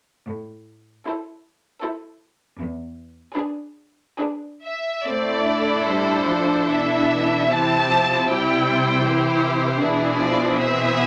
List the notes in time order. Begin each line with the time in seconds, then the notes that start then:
0.28 A2
1.07 E4 A4 C5
1.81 E4 A4 C5
2.59 E2
3.35 D4 G#4 B4
4.20 D4 G#4 B4
4.65 E5
5.06 A2 A3 C4 E4 A4 D5
5.48 D4
5.88 G3 C5
6.29 F3
6.68 B2 E3 E4 E5
7.52 C3 E3 C4 E4 G4 A5
7.91 F3
8.29 G3 E4 G4 G5
8.68 C5
9.05 E3 E4 G4
9.81 B2 E3 D4 E4 G#4
10.18 F3 D5
10.57 E3 C4 G#4 E5
10.97 B3